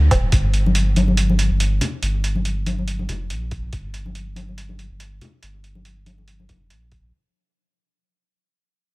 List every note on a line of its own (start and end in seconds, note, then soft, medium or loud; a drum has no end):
0.11 0.31 D1 medium
0.11 kick loud
0.11 closed hi-hat soft
0.11 low woodblock medium
0.32 1.49 G1 loud
0.32 kick loud
0.32 closed hi-hat medium
0.54 closed hi-hat soft
0.66 high conga medium
0.75 closed hi-hat medium
0.96 closed hi-hat soft
0.96 high conga medium
1.08 high conga medium
1.17 closed hi-hat medium
1.30 high conga medium
1.39 closed hi-hat soft
1.50 1.80 G1 medium
1.60 closed hi-hat medium
1.81 closed hi-hat soft
1.81 low conga medium
2.02 3.08 G1 loud
2.02 closed hi-hat medium
2.24 closed hi-hat soft
2.35 high conga medium
2.45 closed hi-hat medium
2.66 closed hi-hat soft
2.66 high conga medium
2.79 high conga medium
2.88 closed hi-hat medium
2.99 high conga medium
3.08 3.31 F1 medium
3.08 closed hi-hat soft
3.08 low conga medium
3.30 3.71 A#1 loud
3.30 closed hi-hat medium
3.51 kick loud
3.51 closed hi-hat soft
3.73 4.90 G1 loud
3.73 kick loud
3.73 closed hi-hat medium
3.94 closed hi-hat soft
4.06 high conga medium
4.15 closed hi-hat medium
4.36 closed hi-hat soft
4.36 high conga medium
4.49 high conga soft
4.58 closed hi-hat medium
4.69 high conga medium
4.79 closed hi-hat soft
4.91 5.20 G1 medium
5.00 closed hi-hat medium
5.21 closed hi-hat soft
5.21 low conga medium
5.43 6.48 G1 medium
5.43 closed hi-hat medium
5.64 closed hi-hat soft
5.75 high conga soft
5.85 closed hi-hat medium
6.06 closed hi-hat soft
6.06 high conga medium
6.18 high conga medium
6.28 closed hi-hat medium
6.40 high conga medium
6.49 6.72 F1 medium
6.49 kick medium
6.49 closed hi-hat soft
6.49 low conga medium
6.70 7.12 A#1 loud
6.70 closed hi-hat medium
6.92 kick medium
6.92 closed hi-hat soft